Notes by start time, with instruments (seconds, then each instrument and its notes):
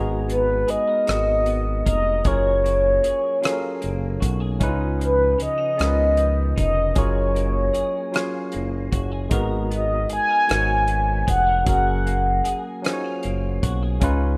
Already playing: analog synth bass G#1, tine electric piano G#3 B3 D#4 F#4 G#4, clean electric guitar G#3 A#4
0.29 clean electric guitar B3, soft synth lead B4, closed hi-hat
0.68 analog synth bass G#1, clean electric guitar G#4, soft synth lead D#5, closed hi-hat
0.87 clean electric guitar A#4
1.06 analog synth bass G#1, tine electric piano G#3 D#4 F#4 A#4, clean electric guitar F#4, cross-stick, closed hi-hat
1.10 tine electric piano B3
1.46 clean electric guitar B3, closed hi-hat
1.86 analog synth bass F1, clean electric guitar A#4, soft synth lead D#5, kick, closed hi-hat
2.23 analog synth bass F#1, tine electric piano F#3 C#4 F4 G#4, clean electric guitar F#3 G#4, soft synth lead C#5, kick, closed hi-hat
2.28 tine electric piano A#4
2.64 clean electric guitar A#3, closed hi-hat
3.04 analog synth bass F#1, clean electric guitar G#4, closed hi-hat
3.41 tine electric piano F#3 C#4 F4 G#4, clean electric guitar F4, closed hi-hat
3.45 tine electric piano A4, cross-stick
3.52 tine electric piano A#4
3.81 analog synth bass F#1, clean electric guitar A#3, closed hi-hat
4.20 analog synth bass B1, clean electric guitar F#4, kick, closed hi-hat
4.40 clean electric guitar G#4
4.59 analog synth bass C#2, tine electric piano C#3 C#4 D#4 E4, clean electric guitar C#3 D#4, kick, closed hi-hat
4.63 tine electric piano B4
4.69 tine electric piano F4
4.99 clean electric guitar F3, soft synth lead B4, closed hi-hat
5.38 analog synth bass C#2, clean electric guitar C#4, soft synth lead D#5, closed hi-hat
5.58 clean electric guitar D#4
5.77 analog synth bass C#2, tine electric piano C#3 C#4 D#4 F4, clean electric guitar B3, closed hi-hat
5.81 tine electric piano A#4, cross-stick
5.87 tine electric piano B4
6.17 clean electric guitar F3, closed hi-hat
6.56 analog synth bass F1, clean electric guitar D#4, soft synth lead D#5, kick, closed hi-hat
6.94 analog synth bass F#1, tine electric piano F#3 C#4 F4 G#4, clean electric guitar F#3 G#4, kick, closed hi-hat
6.98 tine electric piano A#4, soft synth lead C#5
7.35 clean electric guitar A#3, closed hi-hat
7.74 analog synth bass F#1, clean electric guitar G#4, closed hi-hat
8.12 tine electric piano F#3 C#4 F4 G#4, clean electric guitar F4, cross-stick, closed hi-hat
8.16 tine electric piano C#5
8.52 analog synth bass F#1, clean electric guitar A#3, closed hi-hat
8.92 analog synth bass F#1, clean electric guitar F#4, kick, closed hi-hat
9.12 clean electric guitar G#4
9.30 analog synth bass G#1, tine electric piano G#3 D#4 F#4 A#4, clean electric guitar G#3 A#4, kick, closed hi-hat
9.34 tine electric piano B3
9.70 clean electric guitar B3, soft synth lead D#5, closed hi-hat
10.10 analog synth bass G#1, clean electric guitar G#4, soft synth lead G#5, closed hi-hat
10.29 clean electric guitar A#4
10.47 analog synth bass G#1, tine electric piano G#3 D#4 F#4 A#4, clean electric guitar F#4, cross-stick, closed hi-hat
10.51 tine electric piano C5
10.58 tine electric piano C#5
10.88 clean electric guitar B3, closed hi-hat
11.27 analog synth bass F1, clean electric guitar G#4, soft synth lead F#5, kick, closed hi-hat
11.47 clean electric guitar A#4
11.65 analog synth bass F#1, tine electric piano F#3 C#4 F#4 G#4, clean electric guitar F#3 G#4, kick, closed hi-hat
11.69 tine electric piano A#4, soft synth lead F#5
12.06 clean electric guitar A#3, closed hi-hat
12.45 analog synth bass F#1, clean electric guitar G#4, closed hi-hat
12.82 tine electric piano F#3 C#4 F4 G#4, clean electric guitar D#4, closed hi-hat
12.86 tine electric piano C5, cross-stick
12.93 tine electric piano C#5
13.04 clean electric guitar F4
13.23 analog synth bass F#1, clean electric guitar A#3, closed hi-hat
13.63 analog synth bass B1, clean electric guitar F#4, kick, closed hi-hat
13.83 clean electric guitar G#4
14.00 analog synth bass C#2, tine electric piano C#3 C#4 D#4 F4 B4, clean electric guitar C#3 D#4, kick, closed hi-hat